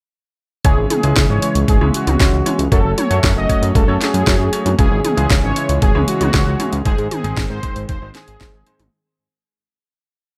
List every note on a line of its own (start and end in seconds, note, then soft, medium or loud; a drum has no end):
0.65 0.74 C#2 loud
0.65 1.00 C#3 medium
0.65 2.70 E3 medium
0.65 1.00 G#3 medium
0.65 2.70 G#3 medium
0.65 1.00 C#4 medium
0.65 6.82 C#4 medium
0.65 1.00 E4 medium
0.65 0.86 G#4 loud
0.65 2.70 G#4 medium
0.65 1.00 C#5 medium
0.65 kick loud
0.65 closed hi-hat medium
0.78 0.87 G#1 medium
0.90 1.22 G#4 medium
0.90 closed hi-hat medium
0.90 high tom medium
1.03 1.13 C#2 medium
1.03 1.39 C#3 medium
1.03 1.39 G#3 medium
1.03 1.39 C#4 medium
1.03 1.39 E4 medium
1.03 1.39 G#4 loud
1.03 closed hi-hat medium
1.16 1.26 C#2 loud
1.16 kick loud
1.16 snare loud
1.16 closed hi-hat medium
1.29 1.39 G#1 medium
1.29 1.61 C#5 medium
1.42 1.78 C#3 medium
1.42 1.78 G#3 medium
1.42 1.78 C#4 medium
1.42 1.78 E4 medium
1.42 1.78 C#5 medium
1.42 closed hi-hat medium
1.55 1.65 C#2 medium
1.55 closed hi-hat medium
1.68 1.78 G#1 loud
1.68 1.89 G#4 medium
1.68 kick loud
1.68 closed hi-hat medium
1.81 1.91 C#2 medium
1.81 2.17 C#3 medium
1.81 2.17 G#3 medium
1.81 2.17 C#4 medium
1.81 2.17 E4 medium
1.81 2.17 C#5 medium
1.81 high tom medium
1.94 2.61 F#4 loud
1.94 closed hi-hat medium
2.07 2.17 C#2 medium
2.07 closed hi-hat medium
2.07 high tom medium
2.20 2.30 C#2 loud
2.20 2.35 C#3 medium
2.20 2.35 G#3 medium
2.20 2.35 C#4 medium
2.20 2.35 E4 medium
2.20 2.35 C#5 medium
2.20 kick loud
2.20 snare loud
2.20 closed hi-hat medium
2.33 2.43 C#2 medium
2.46 2.61 G#3 medium
2.46 2.61 C#4 medium
2.46 2.61 E4 medium
2.46 2.61 C#5 medium
2.46 closed hi-hat medium
2.46 high tom medium
2.59 2.68 C#2 medium
2.59 closed hi-hat medium
2.72 2.81 F#2 loud
2.72 4.77 F#3 medium
2.72 4.77 A3 medium
2.72 3.07 A3 medium
2.72 3.07 C#4 medium
2.72 3.07 F#4 medium
2.72 4.77 F#4 medium
2.72 2.93 A4 loud
2.72 3.07 C#5 medium
2.72 kick loud
2.72 closed hi-hat medium
2.84 2.94 F#1 medium
2.98 3.29 C#5 loud
2.98 closed hi-hat medium
2.98 high tom medium
3.10 3.20 F#2 medium
3.10 3.46 A3 medium
3.10 3.46 C#4 medium
3.10 3.46 F#4 medium
3.10 3.46 A4 loud
3.10 closed hi-hat medium
3.23 3.33 F#2 loud
3.23 kick loud
3.23 snare loud
3.23 closed hi-hat medium
3.36 3.46 F#1 medium
3.36 3.68 D#5 loud
3.49 3.85 A3 medium
3.49 3.85 C#4 medium
3.49 3.85 F#4 medium
3.49 3.85 C#5 medium
3.49 kick medium
3.49 closed hi-hat medium
3.62 3.72 F#2 medium
3.62 closed hi-hat medium
3.75 3.85 C#2 loud
3.75 3.96 A4 medium
3.75 kick loud
3.75 closed hi-hat medium
3.88 3.98 F#2 medium
3.88 4.24 A3 medium
3.88 4.24 C#4 medium
3.88 4.24 F#4 medium
3.88 4.24 C#5 medium
4.01 4.68 G#4 loud
4.01 snare medium
4.01 closed hi-hat medium
4.14 4.24 F#2 medium
4.14 closed hi-hat medium
4.27 4.37 F#2 loud
4.27 4.42 A3 medium
4.27 4.42 C#4 medium
4.27 4.42 F#4 medium
4.27 4.42 C#5 medium
4.27 kick loud
4.27 snare loud
4.27 closed hi-hat medium
4.40 4.49 F#2 medium
4.53 4.68 A3 medium
4.53 4.68 C#4 medium
4.53 4.68 F#4 medium
4.53 4.68 C#5 medium
4.53 closed hi-hat medium
4.66 4.75 F#2 medium
4.66 closed hi-hat medium
4.66 high tom medium
4.78 4.88 C#2 loud
4.78 5.14 C#3 medium
4.78 6.83 E3 medium
4.78 5.14 G#3 medium
4.78 8.88 G#3 medium
4.78 5.14 C#4 medium
4.78 5.14 E4 medium
4.78 8.88 G#4 medium
4.78 5.00 G#4 loud
4.78 5.14 C#5 medium
4.78 kick loud
4.78 closed hi-hat medium
4.91 5.01 G#1 medium
5.05 5.36 G#4 loud
5.05 closed hi-hat medium
5.05 high tom medium
5.17 5.27 C#2 medium
5.17 5.53 C#3 medium
5.17 5.53 G#3 medium
5.17 5.53 C#4 medium
5.17 5.53 E4 medium
5.17 5.53 G#4 loud
5.17 closed hi-hat soft
5.30 5.40 C#2 loud
5.30 kick loud
5.30 snare loud
5.30 closed hi-hat medium
5.43 5.53 G#1 medium
5.43 5.75 C#5 medium
5.56 5.92 C#3 medium
5.56 5.92 G#3 medium
5.56 5.92 C#4 medium
5.56 5.92 E4 medium
5.56 5.92 C#5 medium
5.56 closed hi-hat medium
5.69 5.79 C#2 medium
5.69 closed hi-hat medium
5.82 5.92 G#1 loud
5.82 6.03 G#4 medium
5.82 kick loud
5.82 closed hi-hat medium
5.95 6.05 C#2 medium
5.95 6.31 C#3 medium
5.95 6.31 G#3 medium
5.95 6.31 C#4 medium
5.95 6.31 E4 medium
5.95 6.31 C#5 medium
5.95 high tom medium
6.08 6.75 F#4 loud
6.08 closed hi-hat medium
6.21 6.31 C#2 medium
6.21 closed hi-hat medium
6.21 high tom medium
6.34 6.43 C#2 loud
6.34 6.49 C#3 medium
6.34 6.49 G#3 medium
6.34 6.49 C#4 medium
6.34 6.49 E4 medium
6.34 6.49 C#5 medium
6.34 kick loud
6.34 snare loud
6.34 closed hi-hat medium
6.47 6.56 C#2 medium
6.60 6.75 G#2 medium
6.60 6.75 G#3 medium
6.60 6.75 C#4 medium
6.60 6.75 E4 medium
6.60 6.75 C#5 medium
6.60 closed hi-hat medium
6.60 high tom medium
6.72 6.82 C#2 medium
6.72 closed hi-hat medium
6.85 6.95 G#1 loud
6.85 7.21 G#2 medium
6.85 8.90 D#3 medium
6.85 7.21 G#3 medium
6.85 8.90 C4 medium
6.85 7.21 C4 medium
6.85 7.21 D#4 medium
6.85 7.07 G#4 loud
6.85 7.21 C5 medium
6.85 kick loud
6.85 closed hi-hat medium
6.98 7.08 G#2 medium
6.98 closed hi-hat soft
7.11 7.43 G#4 loud
7.11 closed hi-hat medium
7.11 high tom medium
7.24 7.34 G#1 medium
7.24 7.60 G#2 medium
7.24 7.60 G#3 medium
7.24 7.60 C4 medium
7.24 7.60 D#4 medium
7.24 7.60 G#4 loud
7.24 closed hi-hat soft
7.37 7.47 G#1 loud
7.37 kick loud
7.37 snare loud
7.37 closed hi-hat medium
7.50 7.60 G#2 medium
7.50 7.82 C5 medium
7.63 7.99 G#2 medium
7.63 7.99 G#3 medium
7.63 7.99 C4 medium
7.63 7.99 D#4 medium
7.63 7.99 C5 medium
7.63 kick medium
7.63 closed hi-hat medium
7.76 7.86 G#1 medium
7.76 closed hi-hat medium
7.89 7.99 D#2 loud
7.89 8.10 C5 medium
7.89 kick loud
7.89 closed hi-hat medium
8.02 8.12 G#1 medium
8.02 8.38 G#2 medium
8.02 8.38 G#3 medium
8.02 8.38 C4 medium
8.02 8.38 D#4 medium
8.02 8.38 C5 medium
8.15 8.82 G#4 loud
8.15 snare medium
8.15 closed hi-hat medium
8.28 8.38 G#1 medium
8.28 closed hi-hat medium
8.41 8.50 G#1 loud
8.41 8.56 G#2 medium
8.41 8.56 G#3 medium
8.41 8.56 C4 medium
8.41 8.56 D#4 medium
8.41 8.56 C5 medium
8.41 kick loud
8.41 snare loud
8.41 closed hi-hat medium
8.54 8.63 G#1 medium
8.67 8.82 G#2 medium
8.67 8.82 G#3 medium
8.67 8.82 C4 medium
8.67 8.82 D#4 medium
8.67 8.82 C5 medium
8.67 closed hi-hat medium
8.80 8.89 G#1 medium
8.80 closed hi-hat medium
8.80 high tom medium